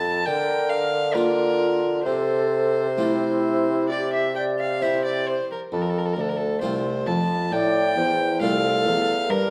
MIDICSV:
0, 0, Header, 1, 5, 480
1, 0, Start_track
1, 0, Key_signature, -1, "major"
1, 0, Tempo, 894188
1, 1103, Time_signature, 4, 2, 24, 8
1, 1103, Tempo, 913242
1, 3503, Tempo, 891530
1, 5054, End_track
2, 0, Start_track
2, 0, Title_t, "Violin"
2, 0, Program_c, 0, 40
2, 0, Note_on_c, 0, 81, 75
2, 138, Note_on_c, 0, 79, 80
2, 146, Note_off_c, 0, 81, 0
2, 374, Note_on_c, 0, 77, 74
2, 382, Note_off_c, 0, 79, 0
2, 612, Note_on_c, 0, 70, 75
2, 620, Note_off_c, 0, 77, 0
2, 1097, Note_off_c, 0, 70, 0
2, 1101, Note_on_c, 0, 72, 71
2, 2053, Note_off_c, 0, 72, 0
2, 2070, Note_on_c, 0, 74, 66
2, 2190, Note_off_c, 0, 74, 0
2, 2196, Note_on_c, 0, 76, 59
2, 2309, Note_off_c, 0, 76, 0
2, 2312, Note_on_c, 0, 79, 62
2, 2354, Note_off_c, 0, 79, 0
2, 2437, Note_on_c, 0, 77, 63
2, 2559, Note_on_c, 0, 76, 72
2, 2567, Note_off_c, 0, 77, 0
2, 2672, Note_off_c, 0, 76, 0
2, 2675, Note_on_c, 0, 74, 64
2, 2796, Note_on_c, 0, 72, 57
2, 2804, Note_off_c, 0, 74, 0
2, 2913, Note_off_c, 0, 72, 0
2, 2923, Note_on_c, 0, 70, 55
2, 2965, Note_off_c, 0, 70, 0
2, 3036, Note_on_c, 0, 69, 50
2, 3080, Note_on_c, 0, 70, 51
2, 3088, Note_off_c, 0, 69, 0
2, 3123, Note_on_c, 0, 69, 54
2, 3131, Note_off_c, 0, 70, 0
2, 3166, Note_on_c, 0, 70, 53
2, 3174, Note_off_c, 0, 69, 0
2, 3206, Note_on_c, 0, 69, 53
2, 3214, Note_off_c, 0, 70, 0
2, 3245, Note_on_c, 0, 70, 60
2, 3253, Note_off_c, 0, 69, 0
2, 3285, Note_on_c, 0, 69, 58
2, 3292, Note_off_c, 0, 70, 0
2, 3328, Note_on_c, 0, 70, 58
2, 3336, Note_off_c, 0, 69, 0
2, 3369, Note_on_c, 0, 69, 65
2, 3377, Note_off_c, 0, 70, 0
2, 3496, Note_off_c, 0, 69, 0
2, 3499, Note_on_c, 0, 72, 68
2, 3741, Note_on_c, 0, 81, 65
2, 3749, Note_off_c, 0, 72, 0
2, 3989, Note_on_c, 0, 79, 78
2, 3997, Note_off_c, 0, 81, 0
2, 4466, Note_off_c, 0, 79, 0
2, 4469, Note_on_c, 0, 77, 85
2, 4945, Note_on_c, 0, 70, 85
2, 4953, Note_off_c, 0, 77, 0
2, 5054, Note_off_c, 0, 70, 0
2, 5054, End_track
3, 0, Start_track
3, 0, Title_t, "Flute"
3, 0, Program_c, 1, 73
3, 139, Note_on_c, 1, 70, 72
3, 618, Note_on_c, 1, 65, 57
3, 626, Note_off_c, 1, 70, 0
3, 1102, Note_off_c, 1, 65, 0
3, 1105, Note_on_c, 1, 69, 59
3, 1530, Note_off_c, 1, 69, 0
3, 1588, Note_on_c, 1, 64, 54
3, 2076, Note_on_c, 1, 67, 60
3, 2084, Note_off_c, 1, 64, 0
3, 2314, Note_off_c, 1, 67, 0
3, 2319, Note_on_c, 1, 74, 62
3, 2554, Note_on_c, 1, 72, 50
3, 2562, Note_off_c, 1, 74, 0
3, 3030, Note_off_c, 1, 72, 0
3, 3990, Note_on_c, 1, 74, 69
3, 4235, Note_on_c, 1, 72, 51
3, 4243, Note_off_c, 1, 74, 0
3, 4468, Note_on_c, 1, 69, 65
3, 4476, Note_off_c, 1, 72, 0
3, 4944, Note_off_c, 1, 69, 0
3, 4947, Note_on_c, 1, 70, 68
3, 5054, Note_off_c, 1, 70, 0
3, 5054, End_track
4, 0, Start_track
4, 0, Title_t, "Harpsichord"
4, 0, Program_c, 2, 6
4, 0, Note_on_c, 2, 41, 49
4, 117, Note_off_c, 2, 41, 0
4, 145, Note_on_c, 2, 50, 50
4, 616, Note_on_c, 2, 58, 34
4, 617, Note_on_c, 2, 65, 37
4, 966, Note_off_c, 2, 58, 0
4, 968, Note_off_c, 2, 65, 0
4, 1084, Note_off_c, 2, 50, 0
4, 1108, Note_on_c, 2, 48, 41
4, 1588, Note_on_c, 2, 57, 33
4, 1590, Note_on_c, 2, 60, 36
4, 1590, Note_on_c, 2, 65, 38
4, 1938, Note_off_c, 2, 57, 0
4, 1939, Note_off_c, 2, 60, 0
4, 1940, Note_off_c, 2, 65, 0
4, 2555, Note_on_c, 2, 60, 33
4, 2559, Note_on_c, 2, 64, 33
4, 2840, Note_off_c, 2, 48, 0
4, 2898, Note_off_c, 2, 60, 0
4, 2900, Note_off_c, 2, 64, 0
4, 3030, Note_on_c, 2, 41, 39
4, 3247, Note_off_c, 2, 41, 0
4, 3265, Note_on_c, 2, 38, 41
4, 3482, Note_off_c, 2, 38, 0
4, 3500, Note_on_c, 2, 57, 34
4, 3501, Note_on_c, 2, 36, 42
4, 3503, Note_on_c, 2, 60, 36
4, 3503, Note_on_c, 2, 65, 38
4, 3722, Note_off_c, 2, 36, 0
4, 3741, Note_on_c, 2, 41, 45
4, 3848, Note_off_c, 2, 57, 0
4, 3850, Note_off_c, 2, 60, 0
4, 3850, Note_off_c, 2, 65, 0
4, 3962, Note_off_c, 2, 41, 0
4, 3983, Note_on_c, 2, 45, 42
4, 4203, Note_off_c, 2, 45, 0
4, 4223, Note_on_c, 2, 40, 42
4, 4444, Note_off_c, 2, 40, 0
4, 4463, Note_on_c, 2, 36, 40
4, 4464, Note_on_c, 2, 57, 34
4, 4468, Note_on_c, 2, 60, 33
4, 4468, Note_on_c, 2, 65, 39
4, 4684, Note_off_c, 2, 36, 0
4, 4707, Note_on_c, 2, 40, 46
4, 4810, Note_off_c, 2, 57, 0
4, 4813, Note_off_c, 2, 60, 0
4, 4813, Note_off_c, 2, 65, 0
4, 4925, Note_off_c, 2, 40, 0
4, 4941, Note_on_c, 2, 43, 41
4, 5054, Note_off_c, 2, 43, 0
4, 5054, End_track
5, 0, Start_track
5, 0, Title_t, "Bassoon"
5, 0, Program_c, 3, 70
5, 0, Note_on_c, 3, 41, 63
5, 120, Note_off_c, 3, 41, 0
5, 145, Note_on_c, 3, 50, 63
5, 1086, Note_off_c, 3, 50, 0
5, 1104, Note_on_c, 3, 48, 55
5, 2838, Note_off_c, 3, 48, 0
5, 3031, Note_on_c, 3, 41, 55
5, 3251, Note_off_c, 3, 41, 0
5, 3266, Note_on_c, 3, 38, 54
5, 3499, Note_off_c, 3, 38, 0
5, 3505, Note_on_c, 3, 36, 50
5, 3747, Note_on_c, 3, 41, 46
5, 3755, Note_off_c, 3, 36, 0
5, 3985, Note_off_c, 3, 41, 0
5, 3988, Note_on_c, 3, 45, 55
5, 4223, Note_off_c, 3, 45, 0
5, 4229, Note_on_c, 3, 40, 49
5, 4463, Note_off_c, 3, 40, 0
5, 4469, Note_on_c, 3, 36, 59
5, 4711, Note_on_c, 3, 40, 52
5, 4719, Note_off_c, 3, 36, 0
5, 4946, Note_off_c, 3, 40, 0
5, 4950, Note_on_c, 3, 43, 62
5, 5054, Note_off_c, 3, 43, 0
5, 5054, End_track
0, 0, End_of_file